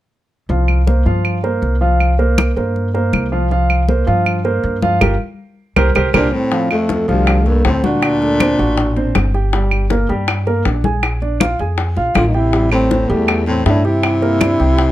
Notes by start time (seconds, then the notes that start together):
0.49 C2 F3 F4 F5, high conga
0.68 high conga, claves
0.87 A#3 A#4 C5, high conga
1.06 G2 F3 F4 F5, high conga
1.25 high conga, claves
1.43 A#3 A#4 C5, high conga
1.62 C2, high conga
1.81 F3 F4 F5
2.00 high conga, claves
2.19 A#3 A#4 C5, high conga
2.38 high conga, claves
2.56 G2 A#3 A#4 C5, high conga
2.76 high conga
2.94 A#3 A#4 C5, high conga
3.13 C2, high conga, claves
3.32 F3 F4 F5
3.51 F3 F4 F5, high conga
3.70 high conga, claves
3.89 A#3 A#4 C5, high conga
4.07 G2 F3 F4 F5, high conga
4.26 high conga, claves
4.45 A#3 A#4 C5, high conga
4.63 G2, high conga
4.82 F3 F4 F5, high conga
5.01 G1 F4 G4 A#4, high conga, claves
5.76 C2 G4 A#4 C5, high conga, claves
5.95 C2 G4 A#4 C5, high conga, claves
6.14 C2 A#2 D4 G4 A#4 C5, high conga, claves
6.33 A2 C4
6.52 F3 F4, high bongo, high conga
6.71 F2 A3, high bongo, high conga, claves
6.89 A3 A4, high bongo, high conga
7.08 C2 D2 F3 G3 F4, high conga
7.27 high bongo, high conga, claves
7.46 G2 A3 A#3 A4, high bongo, high conga
7.65 D2 A2 C4 C5, high bongo, low bongo, high conga
7.84 A#2 D4 F#4 F#5, high bongo, high conga
8.02 high bongo, high conga, claves
8.21 A3 A4, high conga
8.40 C4 C5, high bongo, high conga, claves
8.59 A1 F#4 F#5, high bongo, high conga
8.77 high bongo, high conga
8.96 C4 C5, high bongo, high conga
9.15 G1, high bongo, low bongo, high conga, claves
9.34 G4 G5, high bongo
9.53 G3 G4, high bongo, high conga
9.71 high bongo, high conga, claves
9.90 A#3 A#4, high bongo, high conga
10.09 G2 G3 G4, high conga
10.28 high bongo, high conga, claves
10.47 A#3 A#4, high bongo, high conga
10.65 A#1 D4 D5, high bongo, low bongo, high conga
10.84 G#4 G#5, high bongo, high conga
11.03 high bongo, high conga, claves
11.22 D4 D5, high conga
11.40 F4 F5, high bongo, high conga, claves
11.59 F2 G#4 G#5, high bongo, high conga
11.78 high bongo, high conga
11.96 A#1 F4 F5, high bongo, high conga
12.15 A1 D3 F4, high bongo, low bongo, high conga, claves
12.27 A#2 D#4
12.34 C3 E4 G4 G5, high bongo
12.53 G3 G4, high bongo, high conga
12.72 A2 C4, high bongo, high conga, claves
12.91 C4 C5, high bongo, high conga
13.09 E2 G3 A3 G4, high conga
13.28 high bongo, high conga, claves
13.47 A2 C4 C5, high bongo, high conga
13.66 G2 A2 D4 E4 E5, high bongo, low bongo, high conga
13.85 C3 E4 G4 G5, high bongo
14.03 high bongo, high conga, claves
14.22 A#3 A#4, high conga
14.41 D4 D5, high bongo, high conga, claves
14.60 C2 G4 G5, high bongo, high conga
14.78 high bongo, high conga